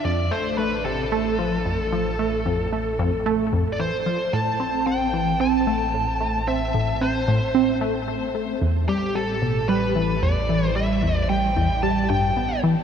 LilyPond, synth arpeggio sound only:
\new Staff \with { instrumentName = "Synth arpeggio sound" } { \clef bass \time 4/4 \key a \minor \tempo 4 = 112 f,8 a8 a8 c8 a8 f8 f,8 f8 | a8 f,8 a8 f,8 a8 f,8 e8 f8 | a,8 c'8 c'8 e8 c'8 a8 a,8 a8 | c'8 a,8 c'8 a,8 c'8 a8 a8 a8 |
e,8 g8 g8 b,8 g8 e8 e,8 e8 | g8 e,8 g8 e,8 g8 g,8 b8 e8 | }